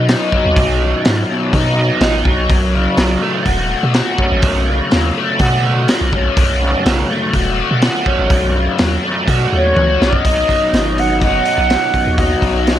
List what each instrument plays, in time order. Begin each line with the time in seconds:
Already playing: overdriven electric guitar F#2 B2 F#3, sub bass B2
0.09 overdriven electric guitar D#4, snare, open hi-hat
0.32 overdriven electric guitar F#3, kick
0.46 sub bass D#2
0.56 sub bass B1, overdriven electric guitar B1, kick, open hi-hat
0.82 overdriven electric guitar F#2
1.05 overdriven electric guitar F#2, sub bass G#2, snare, open hi-hat
1.30 overdriven electric guitar B2
1.53 sub bass B2, overdriven electric guitar D#4, kick, open hi-hat
1.78 overdriven electric guitar B2
2.01 sub bass A1, overdriven electric guitar D#4, snare, open hi-hat
2.25 sub bass B1, overdriven electric guitar F#3, kick
2.50 sub bass B1, overdriven electric guitar F#2, kick, open hi-hat
2.75 overdriven electric guitar C#3
2.97 sub bass B1, overdriven electric guitar F#3, snare, open hi-hat
3.22 overdriven electric guitar A3
3.46 sub bass D#1, overdriven electric guitar F#4, kick, open hi-hat
3.71 overdriven electric guitar A3
3.83 sub bass B2
3.94 overdriven electric guitar F#4, snare, open hi-hat
4.18 overdriven electric guitar C#4, kick
4.32 sub bass A1
4.42 sub bass B1, overdriven electric guitar F#2, kick, open hi-hat
4.68 overdriven electric guitar C#3
4.91 sub bass D#2, overdriven electric guitar F#3, snare, open hi-hat
5.17 overdriven electric guitar A3
5.39 sub bass B2, overdriven electric guitar F#4, kick, open hi-hat
5.65 overdriven electric guitar A3
5.88 overdriven electric guitar F#4, snare, open hi-hat
6.01 sub bass B1
6.13 overdriven electric guitar C#4, kick
6.37 sub bass B1, overdriven electric guitar F#2, kick, open hi-hat
6.62 overdriven electric guitar C#3
6.86 sub bass B1, overdriven electric guitar F#3, snare, open hi-hat
7.10 overdriven electric guitar A3
7.33 sub bass D#1, overdriven electric guitar F#4, kick, open hi-hat
7.60 overdriven electric guitar A3
7.71 sub bass B2
7.82 overdriven electric guitar F#4, snare, open hi-hat
8.06 overdriven electric guitar C#4, kick
8.19 sub bass A1
8.30 sub bass B1, overdriven electric guitar F#2, kick, open hi-hat
8.55 overdriven electric guitar C#3
8.78 sub bass D#2, overdriven electric guitar F#3, snare, open hi-hat
9.03 overdriven electric guitar A3
9.28 sub bass B2, overdriven electric guitar F#4, kick, open hi-hat
9.53 sub bass D#2, overdriven electric guitar A3, flute C#5
9.76 sub bass C#2, overdriven electric guitar F#4, high tom
10.01 sub bass B1, overdriven electric guitar C#4, flute D#5, snare
10.13 kick
10.24 overdriven electric guitar B1 F#2 B2 F#3 D#4, sub bass B1, kick, open hi-hat
10.49 kick, open hi-hat
10.73 sub bass G#1, snare, open hi-hat
10.98 flute F#5, open hi-hat
11.21 sub bass F#1, overdriven electric guitar B1 F#2 B2 F#3 D#4, flute F#5, kick, open hi-hat
11.45 open hi-hat
11.58 sub bass B1
11.70 snare, open hi-hat
11.94 kick, open hi-hat
12.07 sub bass D#2
12.16 overdriven electric guitar B1 F#2 B2 F#3 D#4, flute D#5, kick, open hi-hat
12.42 sub bass B1, kick, open hi-hat
12.67 snare, open hi-hat